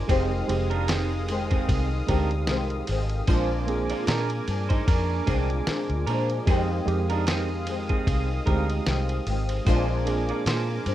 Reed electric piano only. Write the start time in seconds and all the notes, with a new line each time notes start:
Already playing: G#3 C4 D4 D#4 F4
0.08 G#3 C4 D#4 G4
0.48 G#3 C4 D#4 G4
2.07 G#3 C4 D#4 G4
3.27 G#3 C4 D4 F4
3.67 A#3 C4 D4 G#4
5.26 G#3 C4 D4 G#4
6.46 G#3 C4 D#4 G4
6.86 G#3 C4 D#4 G4
8.46 G#3 C4 D#4 G4
9.65 G#3 C4 D4 F4
10.05 A#3 C4 D4 G#4